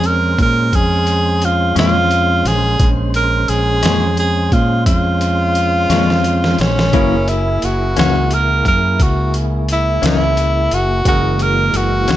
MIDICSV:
0, 0, Header, 1, 7, 480
1, 0, Start_track
1, 0, Key_signature, -5, "minor"
1, 0, Tempo, 688073
1, 1957, Time_signature, 12, 3, 24, 8
1, 8488, End_track
2, 0, Start_track
2, 0, Title_t, "Upright piano"
2, 0, Program_c, 0, 0
2, 4838, Note_on_c, 0, 64, 46
2, 4846, Note_on_c, 0, 68, 46
2, 4852, Note_on_c, 0, 70, 55
2, 7688, Note_off_c, 0, 64, 0
2, 7692, Note_off_c, 0, 68, 0
2, 7695, Note_off_c, 0, 70, 0
2, 7716, Note_on_c, 0, 66, 51
2, 7725, Note_on_c, 0, 68, 47
2, 7729, Note_on_c, 0, 70, 56
2, 8488, Note_off_c, 0, 66, 0
2, 8488, Note_off_c, 0, 68, 0
2, 8488, Note_off_c, 0, 70, 0
2, 8488, End_track
3, 0, Start_track
3, 0, Title_t, "Tenor saxophone"
3, 0, Program_c, 1, 66
3, 46, Note_on_c, 1, 70, 87
3, 280, Note_off_c, 1, 70, 0
3, 292, Note_on_c, 1, 70, 92
3, 526, Note_on_c, 1, 68, 92
3, 537, Note_off_c, 1, 70, 0
3, 1009, Note_on_c, 1, 65, 88
3, 1020, Note_off_c, 1, 68, 0
3, 1240, Note_off_c, 1, 65, 0
3, 1244, Note_on_c, 1, 65, 94
3, 1726, Note_on_c, 1, 68, 91
3, 1736, Note_off_c, 1, 65, 0
3, 2013, Note_off_c, 1, 68, 0
3, 2204, Note_on_c, 1, 70, 85
3, 2437, Note_on_c, 1, 68, 92
3, 2448, Note_off_c, 1, 70, 0
3, 2918, Note_off_c, 1, 68, 0
3, 2924, Note_on_c, 1, 68, 79
3, 3157, Note_on_c, 1, 65, 83
3, 3168, Note_off_c, 1, 68, 0
3, 3387, Note_off_c, 1, 65, 0
3, 3391, Note_on_c, 1, 65, 88
3, 4608, Note_on_c, 1, 61, 82
3, 4619, Note_off_c, 1, 65, 0
3, 5086, Note_on_c, 1, 64, 70
3, 5097, Note_off_c, 1, 61, 0
3, 5333, Note_on_c, 1, 66, 80
3, 5344, Note_off_c, 1, 64, 0
3, 5565, Note_off_c, 1, 66, 0
3, 5569, Note_on_c, 1, 66, 85
3, 5817, Note_on_c, 1, 70, 84
3, 5827, Note_off_c, 1, 66, 0
3, 6047, Note_off_c, 1, 70, 0
3, 6055, Note_on_c, 1, 70, 84
3, 6297, Note_on_c, 1, 66, 73
3, 6308, Note_off_c, 1, 70, 0
3, 6527, Note_off_c, 1, 66, 0
3, 6785, Note_on_c, 1, 64, 83
3, 6995, Note_off_c, 1, 64, 0
3, 7028, Note_on_c, 1, 64, 90
3, 7490, Note_on_c, 1, 66, 89
3, 7501, Note_off_c, 1, 64, 0
3, 7723, Note_off_c, 1, 66, 0
3, 7728, Note_on_c, 1, 66, 98
3, 7969, Note_on_c, 1, 70, 89
3, 7980, Note_off_c, 1, 66, 0
3, 8209, Note_on_c, 1, 66, 103
3, 8219, Note_off_c, 1, 70, 0
3, 8488, Note_off_c, 1, 66, 0
3, 8488, End_track
4, 0, Start_track
4, 0, Title_t, "Tonewheel organ"
4, 0, Program_c, 2, 16
4, 0, Note_on_c, 2, 56, 66
4, 0, Note_on_c, 2, 61, 63
4, 0, Note_on_c, 2, 72, 66
4, 1931, Note_off_c, 2, 56, 0
4, 1931, Note_off_c, 2, 72, 0
4, 1934, Note_off_c, 2, 61, 0
4, 1948, Note_on_c, 2, 56, 62
4, 1951, Note_on_c, 2, 61, 65
4, 1952, Note_on_c, 2, 72, 61
4, 4806, Note_off_c, 2, 56, 0
4, 4807, Note_off_c, 2, 61, 0
4, 4808, Note_off_c, 2, 72, 0
4, 4830, Note_on_c, 2, 64, 65
4, 4831, Note_on_c, 2, 68, 59
4, 4835, Note_on_c, 2, 58, 62
4, 7684, Note_off_c, 2, 64, 0
4, 7684, Note_off_c, 2, 68, 0
4, 7686, Note_off_c, 2, 58, 0
4, 7704, Note_on_c, 2, 52, 68
4, 7706, Note_on_c, 2, 56, 64
4, 7707, Note_on_c, 2, 58, 62
4, 8488, Note_off_c, 2, 52, 0
4, 8488, Note_off_c, 2, 56, 0
4, 8488, Note_off_c, 2, 58, 0
4, 8488, End_track
5, 0, Start_track
5, 0, Title_t, "Clean electric guitar"
5, 0, Program_c, 3, 27
5, 1224, Note_on_c, 3, 61, 62
5, 1229, Note_on_c, 3, 46, 55
5, 1230, Note_on_c, 3, 56, 57
5, 1232, Note_on_c, 3, 53, 57
5, 1374, Note_off_c, 3, 61, 0
5, 1377, Note_off_c, 3, 46, 0
5, 1377, Note_off_c, 3, 56, 0
5, 1378, Note_off_c, 3, 53, 0
5, 2669, Note_on_c, 3, 61, 57
5, 2670, Note_on_c, 3, 56, 54
5, 2672, Note_on_c, 3, 53, 47
5, 2679, Note_on_c, 3, 46, 47
5, 2817, Note_off_c, 3, 61, 0
5, 2818, Note_off_c, 3, 56, 0
5, 2819, Note_off_c, 3, 53, 0
5, 2822, Note_off_c, 3, 46, 0
5, 4114, Note_on_c, 3, 61, 70
5, 4119, Note_on_c, 3, 53, 65
5, 4120, Note_on_c, 3, 56, 68
5, 4126, Note_on_c, 3, 46, 61
5, 4260, Note_off_c, 3, 61, 0
5, 4262, Note_off_c, 3, 53, 0
5, 4263, Note_off_c, 3, 56, 0
5, 4266, Note_off_c, 3, 46, 0
5, 4839, Note_on_c, 3, 42, 59
5, 4842, Note_on_c, 3, 52, 66
5, 4847, Note_on_c, 3, 58, 71
5, 4849, Note_on_c, 3, 61, 73
5, 4982, Note_off_c, 3, 42, 0
5, 4984, Note_off_c, 3, 52, 0
5, 4987, Note_off_c, 3, 58, 0
5, 4988, Note_off_c, 3, 61, 0
5, 5555, Note_on_c, 3, 58, 54
5, 5557, Note_on_c, 3, 61, 64
5, 5559, Note_on_c, 3, 52, 50
5, 5567, Note_on_c, 3, 42, 52
5, 5701, Note_off_c, 3, 58, 0
5, 5701, Note_off_c, 3, 61, 0
5, 5702, Note_off_c, 3, 52, 0
5, 5706, Note_off_c, 3, 42, 0
5, 6989, Note_on_c, 3, 61, 64
5, 6993, Note_on_c, 3, 52, 57
5, 6994, Note_on_c, 3, 58, 58
5, 6999, Note_on_c, 3, 42, 53
5, 7137, Note_off_c, 3, 61, 0
5, 7138, Note_off_c, 3, 52, 0
5, 7139, Note_off_c, 3, 58, 0
5, 7141, Note_off_c, 3, 42, 0
5, 8427, Note_on_c, 3, 61, 59
5, 8435, Note_on_c, 3, 58, 57
5, 8436, Note_on_c, 3, 52, 51
5, 8440, Note_on_c, 3, 42, 49
5, 8488, Note_off_c, 3, 42, 0
5, 8488, Note_off_c, 3, 52, 0
5, 8488, Note_off_c, 3, 58, 0
5, 8488, Note_off_c, 3, 61, 0
5, 8488, End_track
6, 0, Start_track
6, 0, Title_t, "Fingered electric bass"
6, 0, Program_c, 4, 33
6, 0, Note_on_c, 4, 41, 83
6, 243, Note_off_c, 4, 41, 0
6, 270, Note_on_c, 4, 46, 97
6, 493, Note_off_c, 4, 46, 0
6, 509, Note_on_c, 4, 41, 85
6, 1205, Note_off_c, 4, 41, 0
6, 1228, Note_on_c, 4, 41, 94
6, 1685, Note_off_c, 4, 41, 0
6, 1710, Note_on_c, 4, 34, 80
6, 1934, Note_off_c, 4, 34, 0
6, 1953, Note_on_c, 4, 34, 103
6, 2408, Note_off_c, 4, 34, 0
6, 2434, Note_on_c, 4, 34, 82
6, 2656, Note_off_c, 4, 34, 0
6, 2674, Note_on_c, 4, 41, 87
6, 3128, Note_off_c, 4, 41, 0
6, 3156, Note_on_c, 4, 46, 89
6, 3377, Note_off_c, 4, 46, 0
6, 3394, Note_on_c, 4, 41, 85
6, 4088, Note_off_c, 4, 41, 0
6, 4115, Note_on_c, 4, 41, 94
6, 4569, Note_off_c, 4, 41, 0
6, 4599, Note_on_c, 4, 34, 77
6, 4819, Note_off_c, 4, 34, 0
6, 4836, Note_on_c, 4, 30, 109
6, 5289, Note_off_c, 4, 30, 0
6, 5325, Note_on_c, 4, 30, 74
6, 5542, Note_off_c, 4, 30, 0
6, 5564, Note_on_c, 4, 37, 85
6, 6012, Note_off_c, 4, 37, 0
6, 6035, Note_on_c, 4, 42, 88
6, 6257, Note_off_c, 4, 42, 0
6, 6275, Note_on_c, 4, 37, 85
6, 6968, Note_off_c, 4, 37, 0
6, 6995, Note_on_c, 4, 37, 96
6, 7448, Note_off_c, 4, 37, 0
6, 7475, Note_on_c, 4, 30, 80
6, 7696, Note_off_c, 4, 30, 0
6, 7711, Note_on_c, 4, 30, 108
6, 8165, Note_off_c, 4, 30, 0
6, 8184, Note_on_c, 4, 30, 73
6, 8410, Note_off_c, 4, 30, 0
6, 8431, Note_on_c, 4, 37, 80
6, 8488, Note_off_c, 4, 37, 0
6, 8488, End_track
7, 0, Start_track
7, 0, Title_t, "Drums"
7, 25, Note_on_c, 9, 42, 53
7, 95, Note_off_c, 9, 42, 0
7, 269, Note_on_c, 9, 36, 77
7, 269, Note_on_c, 9, 42, 53
7, 339, Note_off_c, 9, 36, 0
7, 339, Note_off_c, 9, 42, 0
7, 509, Note_on_c, 9, 36, 82
7, 510, Note_on_c, 9, 42, 74
7, 579, Note_off_c, 9, 36, 0
7, 580, Note_off_c, 9, 42, 0
7, 744, Note_on_c, 9, 42, 54
7, 814, Note_off_c, 9, 42, 0
7, 988, Note_on_c, 9, 42, 52
7, 1058, Note_off_c, 9, 42, 0
7, 1229, Note_on_c, 9, 42, 70
7, 1249, Note_on_c, 9, 38, 98
7, 1299, Note_off_c, 9, 42, 0
7, 1318, Note_off_c, 9, 38, 0
7, 1470, Note_on_c, 9, 42, 54
7, 1539, Note_off_c, 9, 42, 0
7, 1712, Note_on_c, 9, 42, 59
7, 1732, Note_on_c, 9, 38, 30
7, 1782, Note_off_c, 9, 42, 0
7, 1802, Note_off_c, 9, 38, 0
7, 1950, Note_on_c, 9, 42, 81
7, 1951, Note_on_c, 9, 36, 107
7, 2020, Note_off_c, 9, 42, 0
7, 2021, Note_off_c, 9, 36, 0
7, 2191, Note_on_c, 9, 42, 57
7, 2261, Note_off_c, 9, 42, 0
7, 2430, Note_on_c, 9, 42, 63
7, 2500, Note_off_c, 9, 42, 0
7, 2670, Note_on_c, 9, 42, 87
7, 2690, Note_on_c, 9, 38, 100
7, 2740, Note_off_c, 9, 42, 0
7, 2759, Note_off_c, 9, 38, 0
7, 2911, Note_on_c, 9, 42, 59
7, 2981, Note_off_c, 9, 42, 0
7, 3153, Note_on_c, 9, 36, 72
7, 3153, Note_on_c, 9, 42, 57
7, 3222, Note_off_c, 9, 36, 0
7, 3223, Note_off_c, 9, 42, 0
7, 3392, Note_on_c, 9, 36, 78
7, 3392, Note_on_c, 9, 42, 86
7, 3462, Note_off_c, 9, 36, 0
7, 3462, Note_off_c, 9, 42, 0
7, 3634, Note_on_c, 9, 42, 58
7, 3703, Note_off_c, 9, 42, 0
7, 3873, Note_on_c, 9, 42, 58
7, 3943, Note_off_c, 9, 42, 0
7, 4115, Note_on_c, 9, 42, 80
7, 4135, Note_on_c, 9, 38, 59
7, 4185, Note_off_c, 9, 42, 0
7, 4205, Note_off_c, 9, 38, 0
7, 4257, Note_on_c, 9, 38, 54
7, 4327, Note_off_c, 9, 38, 0
7, 4355, Note_on_c, 9, 42, 51
7, 4425, Note_off_c, 9, 42, 0
7, 4492, Note_on_c, 9, 38, 62
7, 4562, Note_off_c, 9, 38, 0
7, 4594, Note_on_c, 9, 42, 53
7, 4613, Note_on_c, 9, 38, 86
7, 4663, Note_off_c, 9, 42, 0
7, 4683, Note_off_c, 9, 38, 0
7, 4736, Note_on_c, 9, 38, 77
7, 4806, Note_off_c, 9, 38, 0
7, 4835, Note_on_c, 9, 42, 76
7, 4836, Note_on_c, 9, 36, 102
7, 4905, Note_off_c, 9, 36, 0
7, 4905, Note_off_c, 9, 42, 0
7, 5076, Note_on_c, 9, 42, 57
7, 5146, Note_off_c, 9, 42, 0
7, 5317, Note_on_c, 9, 42, 57
7, 5387, Note_off_c, 9, 42, 0
7, 5557, Note_on_c, 9, 42, 73
7, 5576, Note_on_c, 9, 38, 107
7, 5626, Note_off_c, 9, 42, 0
7, 5646, Note_off_c, 9, 38, 0
7, 5794, Note_on_c, 9, 42, 59
7, 5864, Note_off_c, 9, 42, 0
7, 6035, Note_on_c, 9, 36, 72
7, 6038, Note_on_c, 9, 42, 56
7, 6105, Note_off_c, 9, 36, 0
7, 6107, Note_off_c, 9, 42, 0
7, 6275, Note_on_c, 9, 36, 80
7, 6276, Note_on_c, 9, 42, 78
7, 6345, Note_off_c, 9, 36, 0
7, 6346, Note_off_c, 9, 42, 0
7, 6515, Note_on_c, 9, 42, 59
7, 6585, Note_off_c, 9, 42, 0
7, 6756, Note_on_c, 9, 42, 59
7, 6826, Note_off_c, 9, 42, 0
7, 6996, Note_on_c, 9, 42, 83
7, 7016, Note_on_c, 9, 38, 104
7, 7066, Note_off_c, 9, 42, 0
7, 7085, Note_off_c, 9, 38, 0
7, 7235, Note_on_c, 9, 42, 63
7, 7305, Note_off_c, 9, 42, 0
7, 7474, Note_on_c, 9, 42, 59
7, 7544, Note_off_c, 9, 42, 0
7, 7711, Note_on_c, 9, 36, 102
7, 7711, Note_on_c, 9, 42, 85
7, 7781, Note_off_c, 9, 36, 0
7, 7781, Note_off_c, 9, 42, 0
7, 7948, Note_on_c, 9, 42, 57
7, 8017, Note_off_c, 9, 42, 0
7, 8188, Note_on_c, 9, 42, 61
7, 8258, Note_off_c, 9, 42, 0
7, 8425, Note_on_c, 9, 42, 77
7, 8445, Note_on_c, 9, 38, 100
7, 8488, Note_off_c, 9, 38, 0
7, 8488, Note_off_c, 9, 42, 0
7, 8488, End_track
0, 0, End_of_file